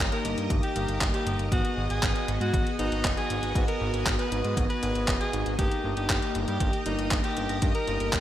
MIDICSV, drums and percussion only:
0, 0, Header, 1, 2, 480
1, 0, Start_track
1, 0, Key_signature, 5, "minor"
1, 0, Tempo, 508475
1, 1434, Time_signature, 4, 2, 24, 8
1, 7742, End_track
2, 0, Start_track
2, 0, Title_t, "Drums"
2, 115, Note_on_c, 9, 42, 40
2, 209, Note_off_c, 9, 42, 0
2, 235, Note_on_c, 9, 42, 65
2, 329, Note_off_c, 9, 42, 0
2, 356, Note_on_c, 9, 42, 41
2, 450, Note_off_c, 9, 42, 0
2, 473, Note_on_c, 9, 36, 123
2, 475, Note_on_c, 9, 42, 94
2, 568, Note_off_c, 9, 36, 0
2, 569, Note_off_c, 9, 42, 0
2, 595, Note_on_c, 9, 42, 39
2, 690, Note_off_c, 9, 42, 0
2, 715, Note_on_c, 9, 42, 66
2, 810, Note_off_c, 9, 42, 0
2, 835, Note_on_c, 9, 42, 39
2, 929, Note_off_c, 9, 42, 0
2, 953, Note_on_c, 9, 36, 121
2, 955, Note_on_c, 9, 39, 122
2, 955, Note_on_c, 9, 42, 92
2, 1048, Note_off_c, 9, 36, 0
2, 1049, Note_off_c, 9, 39, 0
2, 1049, Note_off_c, 9, 42, 0
2, 1076, Note_on_c, 9, 42, 39
2, 1170, Note_off_c, 9, 42, 0
2, 1196, Note_on_c, 9, 42, 66
2, 1290, Note_off_c, 9, 42, 0
2, 1315, Note_on_c, 9, 42, 40
2, 1410, Note_off_c, 9, 42, 0
2, 1433, Note_on_c, 9, 36, 124
2, 1435, Note_on_c, 9, 42, 92
2, 1527, Note_off_c, 9, 36, 0
2, 1529, Note_off_c, 9, 42, 0
2, 1554, Note_on_c, 9, 42, 38
2, 1649, Note_off_c, 9, 42, 0
2, 1794, Note_on_c, 9, 42, 39
2, 1889, Note_off_c, 9, 42, 0
2, 1913, Note_on_c, 9, 36, 108
2, 1915, Note_on_c, 9, 39, 117
2, 1915, Note_on_c, 9, 42, 89
2, 2008, Note_off_c, 9, 36, 0
2, 2009, Note_off_c, 9, 39, 0
2, 2009, Note_off_c, 9, 42, 0
2, 2035, Note_on_c, 9, 42, 37
2, 2129, Note_off_c, 9, 42, 0
2, 2155, Note_on_c, 9, 42, 64
2, 2250, Note_off_c, 9, 42, 0
2, 2277, Note_on_c, 9, 42, 40
2, 2371, Note_off_c, 9, 42, 0
2, 2394, Note_on_c, 9, 36, 123
2, 2396, Note_on_c, 9, 42, 87
2, 2488, Note_off_c, 9, 36, 0
2, 2491, Note_off_c, 9, 42, 0
2, 2517, Note_on_c, 9, 42, 37
2, 2612, Note_off_c, 9, 42, 0
2, 2636, Note_on_c, 9, 42, 63
2, 2730, Note_off_c, 9, 42, 0
2, 2757, Note_on_c, 9, 42, 39
2, 2851, Note_off_c, 9, 42, 0
2, 2874, Note_on_c, 9, 36, 115
2, 2876, Note_on_c, 9, 39, 122
2, 2876, Note_on_c, 9, 42, 89
2, 2968, Note_off_c, 9, 36, 0
2, 2971, Note_off_c, 9, 39, 0
2, 2971, Note_off_c, 9, 42, 0
2, 2996, Note_on_c, 9, 42, 39
2, 3090, Note_off_c, 9, 42, 0
2, 3117, Note_on_c, 9, 42, 64
2, 3211, Note_off_c, 9, 42, 0
2, 3236, Note_on_c, 9, 42, 39
2, 3331, Note_off_c, 9, 42, 0
2, 3354, Note_on_c, 9, 36, 121
2, 3357, Note_on_c, 9, 42, 90
2, 3448, Note_off_c, 9, 36, 0
2, 3452, Note_off_c, 9, 42, 0
2, 3475, Note_on_c, 9, 42, 38
2, 3570, Note_off_c, 9, 42, 0
2, 3717, Note_on_c, 9, 42, 40
2, 3811, Note_off_c, 9, 42, 0
2, 3834, Note_on_c, 9, 36, 105
2, 3836, Note_on_c, 9, 39, 118
2, 3836, Note_on_c, 9, 42, 88
2, 3928, Note_off_c, 9, 36, 0
2, 3931, Note_off_c, 9, 39, 0
2, 3931, Note_off_c, 9, 42, 0
2, 3956, Note_on_c, 9, 42, 40
2, 4051, Note_off_c, 9, 42, 0
2, 4077, Note_on_c, 9, 42, 66
2, 4172, Note_off_c, 9, 42, 0
2, 4196, Note_on_c, 9, 42, 41
2, 4290, Note_off_c, 9, 42, 0
2, 4314, Note_on_c, 9, 36, 118
2, 4316, Note_on_c, 9, 42, 92
2, 4408, Note_off_c, 9, 36, 0
2, 4411, Note_off_c, 9, 42, 0
2, 4437, Note_on_c, 9, 42, 39
2, 4532, Note_off_c, 9, 42, 0
2, 4557, Note_on_c, 9, 42, 66
2, 4651, Note_off_c, 9, 42, 0
2, 4676, Note_on_c, 9, 42, 39
2, 4771, Note_off_c, 9, 42, 0
2, 4794, Note_on_c, 9, 36, 110
2, 4795, Note_on_c, 9, 39, 117
2, 4795, Note_on_c, 9, 42, 89
2, 4888, Note_off_c, 9, 36, 0
2, 4889, Note_off_c, 9, 39, 0
2, 4889, Note_off_c, 9, 42, 0
2, 4916, Note_on_c, 9, 42, 40
2, 5010, Note_off_c, 9, 42, 0
2, 5035, Note_on_c, 9, 42, 65
2, 5129, Note_off_c, 9, 42, 0
2, 5155, Note_on_c, 9, 42, 40
2, 5249, Note_off_c, 9, 42, 0
2, 5274, Note_on_c, 9, 36, 114
2, 5275, Note_on_c, 9, 42, 95
2, 5368, Note_off_c, 9, 36, 0
2, 5369, Note_off_c, 9, 42, 0
2, 5395, Note_on_c, 9, 42, 40
2, 5489, Note_off_c, 9, 42, 0
2, 5634, Note_on_c, 9, 42, 39
2, 5729, Note_off_c, 9, 42, 0
2, 5754, Note_on_c, 9, 36, 104
2, 5755, Note_on_c, 9, 39, 117
2, 5755, Note_on_c, 9, 42, 91
2, 5849, Note_off_c, 9, 36, 0
2, 5849, Note_off_c, 9, 39, 0
2, 5849, Note_off_c, 9, 42, 0
2, 5876, Note_on_c, 9, 42, 40
2, 5970, Note_off_c, 9, 42, 0
2, 5994, Note_on_c, 9, 42, 64
2, 6089, Note_off_c, 9, 42, 0
2, 6115, Note_on_c, 9, 42, 40
2, 6209, Note_off_c, 9, 42, 0
2, 6234, Note_on_c, 9, 36, 117
2, 6234, Note_on_c, 9, 42, 94
2, 6328, Note_off_c, 9, 36, 0
2, 6329, Note_off_c, 9, 42, 0
2, 6354, Note_on_c, 9, 42, 40
2, 6449, Note_off_c, 9, 42, 0
2, 6473, Note_on_c, 9, 42, 68
2, 6568, Note_off_c, 9, 42, 0
2, 6595, Note_on_c, 9, 42, 40
2, 6689, Note_off_c, 9, 42, 0
2, 6713, Note_on_c, 9, 39, 114
2, 6713, Note_on_c, 9, 42, 92
2, 6714, Note_on_c, 9, 36, 112
2, 6807, Note_off_c, 9, 39, 0
2, 6807, Note_off_c, 9, 42, 0
2, 6809, Note_off_c, 9, 36, 0
2, 6833, Note_on_c, 9, 42, 39
2, 6928, Note_off_c, 9, 42, 0
2, 6954, Note_on_c, 9, 42, 63
2, 7049, Note_off_c, 9, 42, 0
2, 7074, Note_on_c, 9, 42, 40
2, 7168, Note_off_c, 9, 42, 0
2, 7193, Note_on_c, 9, 42, 97
2, 7194, Note_on_c, 9, 36, 119
2, 7288, Note_off_c, 9, 42, 0
2, 7289, Note_off_c, 9, 36, 0
2, 7313, Note_on_c, 9, 42, 40
2, 7408, Note_off_c, 9, 42, 0
2, 7434, Note_on_c, 9, 42, 39
2, 7528, Note_off_c, 9, 42, 0
2, 7554, Note_on_c, 9, 42, 41
2, 7649, Note_off_c, 9, 42, 0
2, 7673, Note_on_c, 9, 39, 115
2, 7673, Note_on_c, 9, 42, 95
2, 7674, Note_on_c, 9, 36, 108
2, 7742, Note_off_c, 9, 36, 0
2, 7742, Note_off_c, 9, 39, 0
2, 7742, Note_off_c, 9, 42, 0
2, 7742, End_track
0, 0, End_of_file